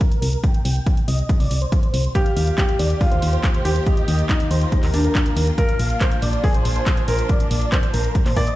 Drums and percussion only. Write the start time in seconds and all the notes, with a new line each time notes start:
0.01 kick, closed hi-hat
0.12 closed hi-hat
0.22 open hi-hat
0.33 closed hi-hat
0.44 kick, closed hi-hat
0.54 closed hi-hat
0.65 open hi-hat
0.76 closed hi-hat
0.86 kick, closed hi-hat
0.97 closed hi-hat
1.08 open hi-hat
1.19 closed hi-hat
1.29 kick, closed hi-hat
1.40 open hi-hat
1.51 open hi-hat
1.62 closed hi-hat
1.72 kick, closed hi-hat
1.83 closed hi-hat
1.94 open hi-hat
2.04 closed hi-hat
2.15 kick, closed hi-hat
2.26 closed hi-hat
2.37 open hi-hat
2.47 closed hi-hat
2.58 kick, clap, closed hi-hat
2.69 closed hi-hat
2.79 open hi-hat
2.90 closed hi-hat
3.01 kick, open hi-hat
3.12 closed hi-hat
3.22 open hi-hat
3.33 closed hi-hat
3.44 kick, clap, closed hi-hat
3.54 closed hi-hat
3.65 open hi-hat
3.76 closed hi-hat
3.86 kick, closed hi-hat
3.97 closed hi-hat
4.08 open hi-hat
4.19 closed hi-hat
4.29 kick, clap, closed hi-hat
4.40 closed hi-hat
4.51 open hi-hat
4.61 closed hi-hat
4.72 kick, closed hi-hat
4.83 clap, open hi-hat
4.94 open hi-hat
5.04 closed hi-hat
5.15 kick, clap, closed hi-hat
5.26 closed hi-hat
5.37 open hi-hat
5.47 closed hi-hat
5.58 kick, closed hi-hat
5.69 closed hi-hat
5.79 open hi-hat
5.90 closed hi-hat
6.01 kick, clap, closed hi-hat
6.11 closed hi-hat
6.22 open hi-hat
6.33 closed hi-hat
6.44 kick, open hi-hat
6.54 closed hi-hat
6.65 open hi-hat
6.76 closed hi-hat
6.87 kick, clap, closed hi-hat
6.97 closed hi-hat
7.08 open hi-hat
7.19 closed hi-hat
7.29 kick, closed hi-hat
7.40 closed hi-hat
7.51 open hi-hat
7.62 closed hi-hat
7.72 kick, clap, closed hi-hat
7.83 closed hi-hat
7.94 open hi-hat
8.04 closed hi-hat
8.15 kick, closed hi-hat
8.26 clap, open hi-hat
8.37 kick, open hi-hat
8.47 closed hi-hat